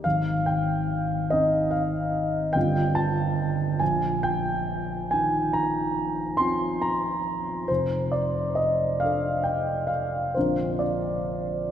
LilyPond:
\new Staff \with { instrumentName = "Grand piano" } { \time 9/8 \key bes \mixolydian \tempo 4. = 46 << { f''8 g''4 ees''8 f''4 g''8 a''4 | aes''8 g''4 aes''8 bes''4 c'''8 bes''4 | c''8 d''8 ees''8 f''8 g''8 f''8 c''8 d''4 | } \\ { aes,,4. <c' ees'>4. <g,, d g c' f'>4. | bes,,4. ees4. <c' f'>4. | f,,4. <d' a'>4. <bes,, d c' d' bes'>4. | } >> }